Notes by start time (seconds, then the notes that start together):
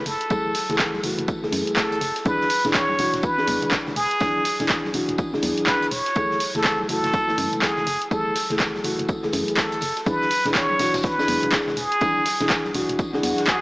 0.06 F#1 A4, open hi-hat, tambourine
0.21 closed hi-hat
0.30 E3 A3 G#4, kick, closed hi-hat, tambourine, high conga
0.55 snare, open hi-hat, tambourine
0.69 F#1 E3 A3 G#4, snare, closed hi-hat
0.79 kick, snare, clap, closed hi-hat, tambourine
0.93 snare, high conga
1.03 F#1 E3 A3 F#4, open hi-hat, tambourine
1.19 F#1, closed hi-hat
1.28 kick, closed hi-hat, tambourine
1.43 E3 A3 G#4, snare, low conga
1.52 F#2, open hi-hat, tambourine, high conga
1.67 closed hi-hat
1.76 E3 A3 G#4 A4, kick, snare, clap, closed hi-hat, tambourine
1.92 closed hi-hat
2.01 F#1, snare, open hi-hat, tambourine
2.16 snare, closed hi-hat
2.25 E3 D4 G#4 B4, kick, closed hi-hat, tambourine, high conga
2.41 snare
2.50 open hi-hat, tambourine
2.64 E1 E3 D4 G#4, snare, closed hi-hat
2.74 C#5, kick, snare, clap, closed hi-hat, tambourine
2.89 high conga
2.98 E1 E3 D4 F#4, snare, open hi-hat, tambourine
3.14 E1, snare, closed hi-hat
3.23 B4, kick, closed hi-hat, tambourine
3.37 E3 D4 G#4, snare
3.47 E2, open hi-hat, tambourine, high conga, low conga
3.62 closed hi-hat, low conga
3.71 E3 D4, kick, snare, clap, closed hi-hat, tambourine
3.86 snare, low conga
3.96 E1 G#4, open hi-hat, tambourine
4.11 closed hi-hat
4.20 E3 D4 G#4, kick, snare, closed hi-hat, tambourine, high conga
4.45 snare, open hi-hat, tambourine
4.60 E1 E3 D4 G#4, snare, closed hi-hat
4.69 kick, snare, clap, closed hi-hat, tambourine
4.84 snare, high conga
4.94 E1 E3 D4 F#4, open hi-hat, tambourine
5.09 E1, closed hi-hat
5.18 kick, closed hi-hat, tambourine
5.33 E3 D4 G#4, snare, low conga
5.43 E2, open hi-hat, tambourine, high conga
5.58 closed hi-hat
5.66 E3 D4 G#4 B4, kick, snare, clap, closed hi-hat, tambourine
5.82 closed hi-hat
5.91 E1 C#5, snare, open hi-hat, tambourine
6.06 snare, closed hi-hat
6.15 E3 A3 G#4, kick, closed hi-hat, tambourine, high conga
6.31 snare
6.40 open hi-hat, tambourine
6.55 F#1 E3 A3 G#4 A4, snare, closed hi-hat
6.64 kick, snare, clap, closed hi-hat, tambourine
6.79 high conga
6.88 F#1 E3 A3 F#4 A4, snare, open hi-hat, tambourine
7.04 F#1, snare, closed hi-hat
7.13 kick, closed hi-hat, tambourine
7.28 E3 A3 A4, snare
7.38 F#2, open hi-hat, tambourine, high conga, low conga
7.53 closed hi-hat, low conga
7.62 E3 A3 G#4, kick, snare, clap, closed hi-hat, tambourine
7.76 snare, low conga
7.87 F#1, open hi-hat, tambourine
8.02 closed hi-hat
8.11 E3 A3 G#4 A4, kick, closed hi-hat, tambourine, high conga
8.35 snare, open hi-hat, tambourine
8.50 F#1 E3 A3 G#4, snare, closed hi-hat
8.59 kick, snare, clap, closed hi-hat, tambourine
8.75 snare, high conga
8.84 F#1 E3 A3 F#4, open hi-hat, tambourine
8.99 F#1, closed hi-hat
9.08 kick, closed hi-hat, tambourine
9.23 E3 A3 G#4, snare, low conga
9.33 F#2, open hi-hat, tambourine, high conga
9.48 closed hi-hat
9.57 A4, kick, snare, clap, closed hi-hat, tambourine
9.72 closed hi-hat
9.81 F#1, snare, open hi-hat, tambourine
9.97 snare, closed hi-hat
10.06 E3 D4 G#4 B4, kick, closed hi-hat, tambourine, high conga
10.21 snare
10.31 open hi-hat, tambourine
10.45 E1 E3 D4 G#4, snare, closed hi-hat
10.55 C#5, kick, snare, clap, closed hi-hat, tambourine
10.70 high conga
10.79 E1 E3 D4 F#4, snare, open hi-hat, tambourine
10.94 E1, snare, closed hi-hat, tambourine
11.03 B4, kick, snare, closed hi-hat, tambourine
11.18 E3 D4 G#4, snare, tambourine
11.28 E2, open hi-hat, tambourine, high conga, low conga
11.43 closed hi-hat, low conga
11.52 E3 D4 G#4, kick, snare, clap, closed hi-hat, tambourine
11.67 snare, low conga
11.77 E1 G#4, open hi-hat, tambourine
11.92 closed hi-hat
12.01 E3 D4 G#4, kick, closed hi-hat, tambourine, high conga
12.25 snare, open hi-hat, tambourine
12.40 E1 E3 D4 G#4, snare, closed hi-hat
12.50 kick, snare, clap, closed hi-hat, tambourine
12.65 snare, high conga
12.74 E1 E3 D4 F#4, open hi-hat, tambourine
12.89 E1, closed hi-hat
12.99 kick, closed hi-hat, tambourine, swell
13.13 E3 D4 G#4, snare, low conga
13.23 E2, open hi-hat, tambourine, high conga
13.38 snare, closed hi-hat
13.47 G#4, kick, clap, closed hi-hat, tambourine